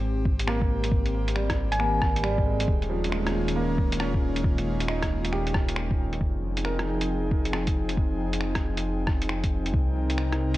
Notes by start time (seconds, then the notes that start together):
Already playing: G#1 C4 G4
0.25 kick
0.39 closed hi-hat
0.47 A#3, finger snap, cross-stick
0.61 kick
0.84 closed hi-hat
0.92 kick
1.06 closed hi-hat
1.28 closed hi-hat
1.36 G3, finger snap
1.50 kick, cross-stick, closed hi-hat
1.72 G#5, closed hi-hat
1.79 A#3, finger snap
2.02 kick, cross-stick
2.16 closed hi-hat
2.23 G3, finger snap
2.38 kick
2.46 G#3
2.60 closed hi-hat
2.67 D#1 D#3 G#3 A#3 C#4 F4, kick
2.82 closed hi-hat
2.89 F3
3.04 closed hi-hat
3.09 G#3, finger snap
3.27 cross-stick, closed hi-hat
3.48 closed hi-hat
3.56 A#3
3.78 kick
3.92 closed hi-hat
4.00 C#4, finger snap, cross-stick
4.15 kick
4.36 closed hi-hat
4.45 kick
4.59 closed hi-hat
4.81 closed hi-hat
4.89 D#4, finger snap
5.03 kick, cross-stick, closed hi-hat
5.25 closed hi-hat
5.33 G4, finger snap
5.47 closed hi-hat
5.54 kick, cross-stick
5.69 closed hi-hat
5.76 finger snap
5.91 kick
6.13 closed hi-hat
6.21 F1 F3 C4 D#4 G#4 G5, kick
6.57 closed hi-hat
6.65 A#4, finger snap
6.79 cross-stick, closed hi-hat
7.01 closed hi-hat
7.31 kick
7.45 closed hi-hat
7.53 finger snap, cross-stick
7.67 kick, closed hi-hat
7.89 closed hi-hat
7.97 kick
8.33 closed hi-hat
8.41 finger snap
8.55 kick, cross-stick, closed hi-hat
8.77 closed hi-hat
9.07 kick, cross-stick
9.22 closed hi-hat
9.29 finger snap
9.43 kick, closed hi-hat
9.66 closed hi-hat
9.73 C2 C3 D#4 A#4, kick
10.10 closed hi-hat
10.18 finger snap
10.32 cross-stick, closed hi-hat
10.54 closed hi-hat